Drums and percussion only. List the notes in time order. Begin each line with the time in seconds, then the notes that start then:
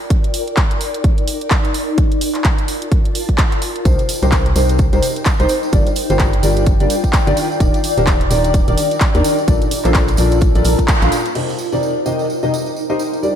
0.10 kick, closed hi-hat
0.24 closed hi-hat
0.34 open hi-hat
0.48 closed hi-hat
0.57 kick, clap, closed hi-hat
0.71 closed hi-hat
0.81 open hi-hat
0.94 closed hi-hat
1.04 kick, closed hi-hat
1.18 closed hi-hat
1.28 open hi-hat
1.41 closed hi-hat
1.50 kick, clap, closed hi-hat
1.65 closed hi-hat
1.74 open hi-hat
1.98 kick, closed hi-hat
2.12 closed hi-hat
2.21 open hi-hat
2.35 clap, closed hi-hat
2.44 kick, clap, closed hi-hat
2.58 closed hi-hat
2.68 open hi-hat
2.82 closed hi-hat
2.92 kick, closed hi-hat
3.05 closed hi-hat
3.15 open hi-hat
3.29 kick, closed hi-hat
3.38 kick, clap, closed hi-hat
3.52 closed hi-hat
3.62 open hi-hat
3.76 closed hi-hat
3.85 kick, closed hi-hat, tambourine
3.99 closed hi-hat, tambourine
4.09 open hi-hat, tambourine
4.22 closed hi-hat, tambourine
4.32 kick, clap, closed hi-hat, tambourine
4.46 closed hi-hat
4.56 open hi-hat, tambourine
4.69 closed hi-hat, tambourine
4.78 kick, closed hi-hat, tambourine
4.93 closed hi-hat, tambourine
5.03 open hi-hat, tambourine
5.16 closed hi-hat, tambourine
5.25 kick, clap, closed hi-hat, tambourine
5.40 closed hi-hat, tambourine
5.49 open hi-hat, tambourine
5.63 tambourine
5.73 kick, closed hi-hat, tambourine
5.87 closed hi-hat, tambourine
5.96 open hi-hat, tambourine
6.10 closed hi-hat, tambourine
6.19 kick, clap, closed hi-hat, tambourine
6.33 closed hi-hat
6.43 open hi-hat, tambourine
6.56 closed hi-hat, tambourine
6.67 kick, closed hi-hat, tambourine
6.80 closed hi-hat, tambourine
6.90 open hi-hat, tambourine
7.04 kick, closed hi-hat, tambourine
7.13 kick, clap, closed hi-hat, tambourine
7.27 closed hi-hat, tambourine
7.37 open hi-hat, tambourine
7.52 tambourine
7.60 kick, closed hi-hat, tambourine
7.74 closed hi-hat, tambourine
7.84 open hi-hat, tambourine
7.98 closed hi-hat, tambourine
8.07 kick, clap, closed hi-hat, tambourine
8.21 closed hi-hat
8.31 open hi-hat, tambourine
8.44 closed hi-hat, tambourine
8.54 kick, closed hi-hat, tambourine
8.68 closed hi-hat, tambourine
8.78 open hi-hat, tambourine
8.91 closed hi-hat, tambourine
9.01 kick, clap, closed hi-hat, tambourine
9.15 closed hi-hat, tambourine
9.24 open hi-hat, tambourine
9.38 tambourine
9.48 kick, closed hi-hat, tambourine
9.62 closed hi-hat, tambourine
9.71 open hi-hat, tambourine
9.85 clap, closed hi-hat, tambourine
9.94 kick, clap, closed hi-hat, tambourine
10.08 closed hi-hat, tambourine
10.17 open hi-hat, tambourine
10.31 closed hi-hat, tambourine
10.41 kick, closed hi-hat, tambourine
10.55 closed hi-hat, tambourine
10.64 open hi-hat, tambourine
10.79 kick, closed hi-hat, tambourine
10.88 kick, clap, closed hi-hat, tambourine
11.02 closed hi-hat, tambourine
11.12 open hi-hat, tambourine
11.25 closed hi-hat, tambourine
11.35 tambourine, crash
11.49 tambourine
11.59 tambourine
11.72 tambourine
11.83 tambourine
12.06 tambourine
12.19 tambourine
12.30 tambourine
12.43 tambourine
12.54 tambourine
12.66 tambourine
12.76 tambourine
12.90 tambourine
12.99 tambourine
13.13 tambourine
13.23 tambourine